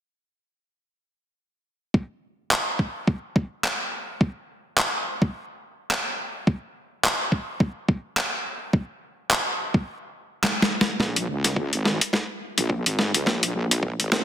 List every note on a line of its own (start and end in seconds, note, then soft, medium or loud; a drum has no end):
1.94 kick loud
2.51 clap loud
2.79 kick medium
3.07 kick loud
3.36 kick loud
3.64 clap loud
4.21 kick loud
4.77 clap loud
5.22 kick loud
5.91 clap loud
6.47 kick loud
7.04 clap loud
7.32 kick medium
7.60 kick loud
7.88 kick loud
8.17 clap loud
8.73 kick loud
9.31 clap loud
9.74 kick loud
10.44 snare medium
10.44 clap loud
10.62 snare medium
10.81 snare medium
11.00 11.26 A#1 loud
11.00 kick medium
11.00 snare soft
11.16 closed hi-hat soft
11.28 11.70 C#2 medium
11.44 snare soft
11.44 closed hi-hat medium
11.56 kick loud
11.72 11.98 G#1 medium
11.72 closed hi-hat soft
11.85 snare medium
12.01 closed hi-hat medium
12.13 kick medium
12.13 snare soft
12.58 12.83 A#1 loud
12.58 closed hi-hat medium
12.70 kick medium
12.86 13.12 G#1 loud
12.86 closed hi-hat medium
12.99 snare medium
13.14 13.24 C#2 loud
13.14 closed hi-hat medium
13.26 13.53 A#1 loud
13.26 kick medium
13.26 snare medium
13.43 closed hi-hat medium
13.54 13.96 A#1 loud
13.71 closed hi-hat medium
13.83 kick loud
13.99 14.24 G#1 medium
13.99 closed hi-hat soft
14.12 snare medium